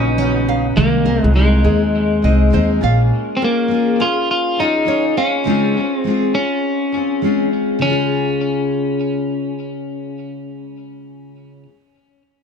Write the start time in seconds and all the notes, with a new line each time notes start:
Already playing: A#1 C#3 F#3 B3 C#4 D#4 B4 D#5
0.17 F#3 C#4 D#4 B4 C#5
0.49 F5
0.76 C2 C3 D#3 G#3 A#3 C4 D#4 G#4
1.05 G#3 C4 D#4 G#4 A#4
1.24 C2 G#3
1.33 G#3 C4 D#4 G#4
1.64 D#2 G#3 C4 D#4 G#4
2.22 C2 G#3 C4 D#4 G#4 D#5
2.50 D#2 G#3 C4 D#4 G#4 C5
2.81 A#1 A#3 C#4 F4 G#4 F5
3.37 C4 G#4
3.41 A#3 C#4 F4 A#4
3.68 A#3 C#4 F4 G#4
3.98 C#4 F4 G#4
4.31 F4
4.57 C#4 D#4 F4 G#4 D#5
4.85 A#3 C#4 F4 G#4 C#5
5.17 C#4 F5
5.44 C#3 G#3 C4 F4 G#4
5.75 C4 F4 G#4
5.98 C4
6.04 G#3 C4 F4 G#4
6.33 C#4 F4 G#4
6.92 F4 G#4
6.97 C4
7.22 G#3 C4 F4 G#4
7.79 C#3 G#3 C#4
7.87 F4 G#4